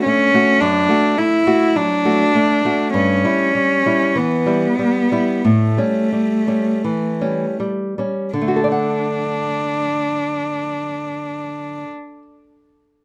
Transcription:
0.05 nylon-string guitar A3, cello C#4
0.34 nylon-string guitar A3 F#4
0.61 nylon-string guitar F#2, cello D4
0.89 nylon-string guitar A3 F#4
1.18 nylon-string guitar A3, cello E4
1.47 nylon-string guitar A3 F#4
1.76 nylon-string guitar F#3, cello D4
2.05 nylon-string guitar A3 F#4
2.35 nylon-string guitar A3
2.65 nylon-string guitar A3 F#4
2.94 nylon-string guitar G2, cello C#4
3.25 nylon-string guitar G3 E4
3.55 nylon-string guitar G3
3.86 nylon-string guitar G3 E4
4.16 nylon-string guitar E3, cello B3
4.46 nylon-string guitar G3 E4
4.79 nylon-string guitar G3
5.12 nylon-string guitar G3 E4
5.45 nylon-string guitar A2, cello A3
5.77 nylon-string guitar G3 C#4
6.12 nylon-string guitar G3
6.47 nylon-string guitar G3 C#4
6.84 nylon-string guitar E3
7.21 nylon-string guitar G3 C#4
7.60 nylon-string guitar G3
7.98 nylon-string guitar G3 C#4
8.33 nylon-string guitar D3, cello D4
8.41 nylon-string guitar A3
8.48 nylon-string guitar F#4
8.56 nylon-string guitar A4
8.64 nylon-string guitar D5
8.72 nylon-string guitar F#5

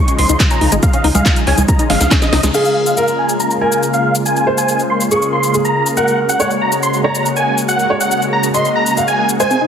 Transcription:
Already playing: supersaw synth C#6
0.08 analog synth pad C#3 F3 G#3 D#4, synth arpeggio sound C#4, closed hi-hat, shaker
0.19 analog synth bass C#2, supersaw synth C6, open hi-hat
0.29 analog synth bass C#2, analog synth pad C#3 F3 G#3 D#4, synth arpeggio sound D#4, closed hi-hat, shaker
0.40 synth arpeggio sound G#3, kick, clap, closed hi-hat, shaker
0.51 analog synth pad C#3 F3 G#3 D#4, synth arpeggio sound C#4, supersaw synth A#5, closed hi-hat, shaker
0.61 analog synth bass C#2, synth arpeggio sound D#4, open hi-hat
0.72 analog synth bass G#1, analog synth pad C#3 F3 G#3 D#4, synth arpeggio sound G#3, closed hi-hat, shaker
0.83 analog synth pad C#3 F3 G#3 D#4, supersaw synth F5, kick, closed hi-hat, shaker
0.93 synth arpeggio sound C#4, closed hi-hat, shaker
1.04 analog synth bass C#2, analog synth pad C#3 F3 G#3 D#4, synth arpeggio sound D#4, open hi-hat
1.15 analog synth bass C#2, synth arpeggio sound G#3, supersaw synth F5, closed hi-hat, high conga, shaker
1.26 analog synth pad C#3 F3 G#3 D#4, kick, clap, closed hi-hat, shaker
1.36 closed hi-hat, shaker
1.47 analog synth bass C#2, analog synth pad C#3 F3 G#3 D#4, synth arpeggio sound C#4, supersaw synth G#5, clap, open hi-hat
1.58 analog synth bass C#2, closed hi-hat, high conga, shaker
1.68 analog synth pad C#3 F3 G#3 D#4, supersaw synth A#5, kick, closed hi-hat, shaker
1.79 analog synth pad C#3 F3 G#3 D#4, synth arpeggio sound D#4, closed hi-hat, shaker
1.90 analog synth bass G#1, synth arpeggio sound G#3, supersaw synth F5, snare, open hi-hat
2.01 analog synth bass C#2, analog synth pad C#3 F3 G#3 D#4, snare, closed hi-hat, shaker
2.11 synth arpeggio sound C#4, kick, snare, clap, closed hi-hat, shaker
2.22 analog synth pad C#3 F3 G#3 D#4, supersaw synth D#5, snare, closed hi-hat, shaker
2.33 analog synth bass C#2, synth arpeggio sound D#4, snare, open hi-hat
2.43 analog synth bass C#2, analog synth pad C#3 F3 G#3 D#4, synth arpeggio sound G#3, snare, closed hi-hat, shaker
2.54 analog synth pad C#3 G#3 A#3 F4, felt piano G#4, supersaw synth F5, crash, shaker
2.65 shaker
2.76 analog synth pad C#3 G#3 A#3 F4
2.86 supersaw synth F5, shaker
2.97 analog synth pad C#3 G#3 A#3 F4, felt piano A#4, shaker
3.08 shaker
3.19 analog synth pad C#3 G#3 A#3 F4, supersaw synth G#5
3.29 shaker
3.40 analog synth pad C#3 G#3 A#3 F4, supersaw synth A#5, shaker
3.51 analog synth pad C#3 G#3 A#3 F4, shaker
3.61 felt piano A#4, supersaw synth G#5
3.72 analog synth pad C#3 G#3 A#3 F4, shaker
3.83 shaker
3.93 analog synth pad C#3 G#3 A#3 F4, supersaw synth F5, shaker
4.15 analog synth pad C#3 G#3 A#3 F4, shaker
4.25 analog synth pad C#3 G#3 A#3 F4, supersaw synth G#5, shaker
4.36 shaker
4.47 analog synth pad C#3 G#3 A#3 F4, felt piano C5
4.58 supersaw synth G#5, shaker
4.68 analog synth pad C#3 G#3 A#3 F4, shaker
4.79 shaker
4.90 analog synth pad C#3 G#3 A#3 F4, supersaw synth C6
5.01 shaker
5.11 analog synth pad C#3 G#3 A#3 F4, felt piano G#4, supersaw synth C#6, shaker
5.22 analog synth pad C#3 G#3 A#3 F4, shaker
5.33 supersaw synth C6
5.43 analog synth pad C#3 G#3 A#3 F4, shaker
5.54 felt piano G#4, shaker
5.65 analog synth pad C#3 G#3 A#3 F4, supersaw synth A#5, shaker
5.86 analog synth pad C#3 G#3 A#3 F4, shaker
5.97 analog synth pad C#3 G#3 A#3 F#4, felt piano A#4, supersaw synth F#5, shaker
6.08 shaker
6.19 analog synth pad C#3 G#3 A#3 F#4
6.29 supersaw synth F#5, shaker
6.40 analog synth pad C#3 G#3 A#3 F#4, felt piano C#5, shaker
6.51 shaker
6.61 analog synth pad C#3 G#3 A#3 F#4, supersaw synth A#5
6.72 shaker
6.83 analog synth pad C#3 G#3 A#3 F#4, supersaw synth C6, shaker
6.93 analog synth pad C#3 G#3 A#3 F#4, shaker
7.04 felt piano C#5, supersaw synth A#5
7.15 analog synth pad C#3 G#3 A#3 F#4, shaker
7.26 shaker
7.36 analog synth pad C#3 G#3 A#3 F#4, supersaw synth G#5, shaker
7.58 analog synth pad C#3 G#3 A#3 F#4, shaker
7.68 analog synth pad C#3 G#3 A#3 F#4, supersaw synth F#5, shaker
7.79 shaker
7.90 analog synth pad C#3 G#3 A#3 F#4, felt piano C#5
8.00 supersaw synth F#5, shaker
8.11 analog synth pad C#3 G#3 A#3 F#4, shaker
8.22 shaker
8.33 analog synth pad C#3 G#3 A#3 F#4, supersaw synth A#5
8.43 shaker
8.54 analog synth pad C#3 G#3 A#3 F#4, felt piano D#5, supersaw synth C6, shaker
8.65 analog synth pad C#3 G#3 A#3 F#4, shaker
8.75 supersaw synth A#5
8.86 analog synth pad C#3 G#3 A#3 F#4, shaker
8.97 felt piano F5, shaker
9.08 analog synth pad C#3 G#3 A#3 F#4, supersaw synth G#5, shaker
9.29 analog synth pad C#3 G#3 A#3 F#4, shaker
9.40 analog synth pad C3 G#3 D#4 G#4, synth arpeggio sound G#3, felt piano C5, supersaw synth G#5, shaker
9.51 synth arpeggio sound C4, shaker
9.61 analog synth pad C3 G#3 D#4 G#4, synth arpeggio sound D#4

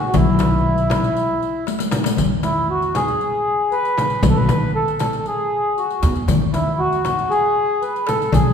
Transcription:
0.08 accordion F#4
0.14 upright bass B1, accordion E4, riq, frame drum, darbuka dum
0.39 riq, darbuka tek, frame drum
0.78 riq, darbuka ka
0.90 riq, darbuka tek, frame drum
1.04 riq, darbuka ka
1.17 riq
1.42 riq, darbuka ka
1.67 riq, darbuka tek
1.79 riq, darbuka ka
1.91 riq, darbuka tek, frame drum
2.04 riq, darbuka ka
2.17 upright bass E2, riq, darbuka dum, frame drum
2.43 accordion E4, riq, darbuka tek, frame drum
2.70 accordion F#4
2.82 riq
2.95 accordion G#4, riq, darbuka tek, frame drum
3.08 riq, darbuka ka
3.21 riq
3.72 accordion B4, riq, darbuka ka
3.85 riq
3.98 riq, darbuka tek, frame drum
4.10 riq, darbuka ka
4.23 upright bass B1, accordion B4, riq, frame drum, darbuka dum
4.30 accordion A4
4.37 accordion B4
4.49 riq, darbuka tek, frame drum
4.75 accordion A4
4.88 riq
4.99 accordion A4, riq, darbuka tek, frame drum
5.13 riq, darbuka ka
5.19 accordion A4
5.26 accordion G#4, riq
5.77 accordion F#4, riq, darbuka ka
5.90 riq
6.03 upright bass E2, riq, darbuka tek, frame drum
6.16 riq
6.28 upright bass E2, riq, frame drum, darbuka dum
6.53 accordion E4, riq, darbuka tek, frame drum
6.79 accordion F#4
6.92 riq
7.05 riq, darbuka tek, frame drum
7.17 riq, darbuka ka
7.30 accordion G#4, riq
7.82 accordion B4, riq, darbuka ka
7.96 riq
8.07 accordion A4, riq, darbuka tek, frame drum
8.21 riq, darbuka ka
8.32 upright bass B1, accordion G#4, riq, darbuka dum, frame drum

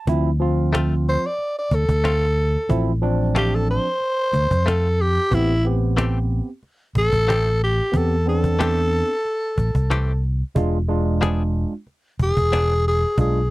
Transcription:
0.07 fingered electric bass D2, tine electric piano F3 C4 E4, cajon bass
0.40 tine electric piano F3 C4 F4, cajon slap
0.73 clean electric guitar A3 C4 F4, cajon slap
1.06 tenor saxophone C5, cajon slap
1.26 tenor saxophone D5
1.39 cajon slap
1.59 tenor saxophone D5
1.71 fingered electric bass D2, tenor saxophone A4, cajon bass
1.89 fingered electric bass D2, cajon bass
2.04 clean electric guitar A3 C4 F4, cajon slap
2.37 cajon slap
2.69 fingered electric bass A1, tine electric piano F3 C4 E4, cajon bass
3.01 tine electric piano F3 C4 D4, cajon slap
3.35 clean electric guitar A3 C4 F4, tenor saxophone G4, cajon slap
3.55 tenor saxophone A4
3.68 tenor saxophone C5, cajon slap
4.01 cajon slap
4.33 fingered electric bass D2, cajon bass
4.51 fingered electric bass F2, cajon bass
4.66 clean electric guitar A3 C4 F4, tenor saxophone A4, cajon slap
5.01 tenor saxophone G4
5.31 fingered electric bass A1, tine electric piano B3 C4 G4, tenor saxophone E4, cajon bass
5.64 tine electric piano B3 C4 G4, cajon slap
5.97 clean electric guitar E3 A3 C4 G4, cajon slap
6.30 cajon slap
6.63 cajon slap
6.95 fingered electric bass A1, tenor saxophone A4, cajon bass
7.13 fingered electric bass A1, cajon bass
7.28 clean electric guitar E3 A3 C4 G4, cajon slap
7.63 tenor saxophone G4
7.92 fingered electric bass E2, tine electric piano B3 C4 G4, cajon bass
7.97 tenor saxophone A4
8.26 tine electric piano B3 C4 D4, tenor saxophone A4
8.44 cajon bass, cajon slap
8.59 clean electric guitar E3 A3 C4 G4, cajon slap
9.25 cajon slap
9.58 fingered electric bass A1, cajon bass, cajon slap
9.75 fingered electric bass C2, cajon bass
9.90 clean electric guitar E3 A3 C4 G4, cajon slap
10.23 cajon slap
10.55 fingered electric bass E1, tine electric piano G#3 D4 F4, cajon bass
10.88 tine electric piano G#3 D4 F4, cajon slap
11.21 clean electric guitar F3 B3 D4 G#4, cajon slap
11.54 cajon slap
11.87 cajon slap
12.19 fingered electric bass E1, tenor saxophone G#4, cajon bass
12.37 fingered electric bass E1, cajon bass
12.52 clean electric guitar F3 B3 D4 G#4, cajon slap
12.85 tenor saxophone G#4, cajon slap
13.17 fingered electric bass B1, tine electric piano G#3 D4 F4, tenor saxophone G#4, cajon bass

